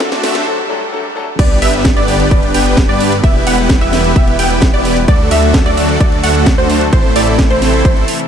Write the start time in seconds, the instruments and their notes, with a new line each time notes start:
Already playing: analog synth pad C5 E5 A5 E6, riser
0.00 detuned saw bass A1, grand piano F#3 A3 D4 A4, supersaw synth D4 D5, kick, snare, closed hi-hat
0.12 snare
0.23 detuned saw bass A1, supersaw synth A3 D4 F#4 A4 E5, snare, open hi-hat
0.35 grand piano F#3 A3 D4 A4, snare, closed hi-hat
0.46 grand piano F#3 A3 D4 A4, swell
0.69 grand piano F#3 A3 D4 A4
0.92 grand piano F#3 A3 D4 A4
1.15 grand piano F#3 A3 D4 A4
1.39 detuned saw bass G1, analog synth pad D3 G3 B3 G4 B4, supersaw synth B3 D4 G4 B4 D5, synth pluck D5, kick, closed hi-hat, crash, sub drop
1.62 detuned saw bass G1, supersaw synth B3 D4 G4 B4 E5, synth pluck E5, open hi-hat
1.74 closed hi-hat
1.85 kick, snare, closed hi-hat
1.97 detuned saw bass G1, supersaw synth B3 D4 G4 B4 D5, synth pluck D5, closed hi-hat
2.08 open hi-hat
2.20 closed hi-hat
2.31 detuned saw bass G1, supersaw synth B3 D4 G4 B4 D5, synth pluck D5, kick, closed hi-hat
2.43 closed hi-hat
2.54 detuned saw bass G1, supersaw synth B3 D4 G4 B4 G5, synth pluck G5, open hi-hat
2.66 closed hi-hat
2.77 kick, snare, closed hi-hat
2.89 detuned saw bass G2, supersaw synth B3 D4 G4 B4 D5, synth pluck D5
3.00 open hi-hat
3.12 closed hi-hat
3.24 detuned saw bass E1, analog synth pad E3 G3, supersaw synth B3 E4 G4 B4 E5, synth pluck E5, kick, closed hi-hat
3.47 detuned saw bass E1, supersaw synth B3 E4 G4 B4 F#5, synth pluck F#5, open hi-hat
3.58 closed hi-hat
3.69 kick, snare, closed hi-hat
3.81 detuned saw bass E1, supersaw synth B3 E4 G4 B4 E5, synth pluck E5, closed hi-hat
3.93 snare, open hi-hat
4.04 closed hi-hat
4.16 detuned saw bass E1, supersaw synth B3 E4 G4 B4 E5, synth pluck E5, kick, closed hi-hat
4.28 closed hi-hat
4.39 detuned saw bass E1, supersaw synth B3 E4 G4 B4 G5, synth pluck G5, open hi-hat
4.50 closed hi-hat
4.62 kick, snare, closed hi-hat
4.74 detuned saw bass E1, supersaw synth B3 E4 G4 B4 D5, synth pluck D5
4.85 open hi-hat
4.97 closed hi-hat
5.08 detuned saw bass D2, analog synth pad D3 F#3 A3 F#4 A4, supersaw synth A3 D4 F#4 A4 D5, synth pluck D5, kick, closed hi-hat
5.31 detuned saw bass D2, supersaw synth A3 D4 F#4 A4 E5, synth pluck E5, open hi-hat
5.43 closed hi-hat
5.54 kick, snare, closed hi-hat
5.66 detuned saw bass D2, supersaw synth A3 D4 F#4 A4 D5, synth pluck D5, closed hi-hat
5.77 open hi-hat
5.89 closed hi-hat
6.00 detuned saw bass D2, supersaw synth A3 D4 F#4 A4 D5, synth pluck D5, kick, closed hi-hat
6.12 closed hi-hat
6.23 detuned saw bass D2, supersaw synth A3 D4 F#4 A4 F#5, synth pluck F#5, open hi-hat
6.35 closed hi-hat
6.46 kick, snare, closed hi-hat
6.58 detuned saw bass D2, supersaw synth A3 D4 F#4 A4 C5, synth pluck C5
6.70 open hi-hat
6.81 closed hi-hat
6.93 detuned saw bass A1, analog synth pad C3 E3 E4, supersaw synth A3 C4 E4 A4 C5, synth pluck C5, kick, closed hi-hat
7.16 detuned saw bass A1, supersaw synth A3 C4 E4 A4 D5, synth pluck D5, open hi-hat
7.27 closed hi-hat
7.39 kick, snare, closed hi-hat
7.50 detuned saw bass A1, supersaw synth A3 C4 E4 A4 C5, synth pluck C5, closed hi-hat
7.62 snare, open hi-hat
7.73 closed hi-hat
7.85 detuned saw bass A1, supersaw synth E4 C5, synth pluck C5, kick, closed hi-hat
7.97 closed hi-hat
8.08 open hi-hat
8.20 closed hi-hat